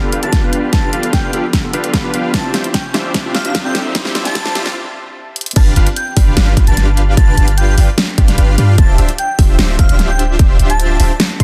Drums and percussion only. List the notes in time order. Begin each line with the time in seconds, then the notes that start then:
0.12 closed hi-hat
0.23 closed hi-hat
0.33 kick, snare, closed hi-hat
0.53 closed hi-hat
0.73 kick, snare, closed hi-hat
0.93 closed hi-hat
1.03 closed hi-hat
1.13 kick, snare, closed hi-hat
1.33 closed hi-hat
1.53 kick, snare, closed hi-hat
1.73 closed hi-hat
1.84 closed hi-hat
1.94 kick, snare, closed hi-hat
2.14 closed hi-hat
2.34 kick, snare, closed hi-hat
2.54 snare, closed hi-hat
2.64 closed hi-hat
2.74 kick, snare, closed hi-hat
2.94 snare, closed hi-hat
3.14 kick, snare, closed hi-hat
3.35 snare, closed hi-hat
3.45 closed hi-hat
3.55 kick, snare, closed hi-hat
3.75 snare, closed hi-hat
3.95 kick, snare, closed hi-hat
4.05 snare
4.15 snare, closed hi-hat
4.25 snare, closed hi-hat
4.35 kick, snare, closed hi-hat
4.45 snare
4.55 snare, closed hi-hat
4.66 snare
5.36 closed hi-hat
5.41 closed hi-hat
5.46 closed hi-hat
5.51 closed hi-hat
5.56 kick, closed hi-hat, crash
5.76 closed hi-hat
5.87 closed hi-hat
5.96 closed hi-hat
6.17 kick, open hi-hat
6.37 snare, closed hi-hat
6.57 kick, closed hi-hat
6.67 closed hi-hat
6.77 snare, closed hi-hat
6.97 closed hi-hat
7.17 kick, closed hi-hat
7.37 closed hi-hat
7.48 closed hi-hat
7.58 closed hi-hat
7.78 open hi-hat
7.98 snare, closed hi-hat
8.18 kick, closed hi-hat
8.28 snare, closed hi-hat
8.38 closed hi-hat
8.58 closed hi-hat
8.78 kick, closed hi-hat
8.98 closed hi-hat
9.09 closed hi-hat
9.18 closed hi-hat
9.39 kick, open hi-hat
9.59 snare, closed hi-hat
9.79 kick, closed hi-hat
9.89 closed hi-hat
9.99 snare, closed hi-hat
10.19 closed hi-hat
10.39 kick, closed hi-hat
10.59 closed hi-hat
10.70 closed hi-hat
10.80 closed hi-hat
11.00 open hi-hat
11.20 snare, closed hi-hat
11.40 kick, closed hi-hat